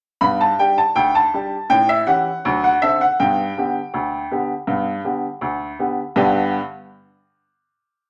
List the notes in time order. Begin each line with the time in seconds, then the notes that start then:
0.21 G2 B3 B5
0.41 A5
0.59 G3 D4 G4 G5
0.78 A5
0.95 D2 G5
1.15 A5
1.34 G3 D4 G4
1.70 A2 C#4 G5
1.89 E5
2.07 E3 C#4 G4 F#5
2.45 D2 F#3
2.64 F#5
2.82 D3 C4 A4 E5
3.01 F#5
3.20 G2 B3 G5
3.57 D3 B3 G4
3.94 D2
4.31 D3 B3 G4
4.67 G2 B3
5.04 D3 B3 G4
5.41 D2
5.79 D3 B3 G4
6.16 G2 D3 B3 D4 G4 B4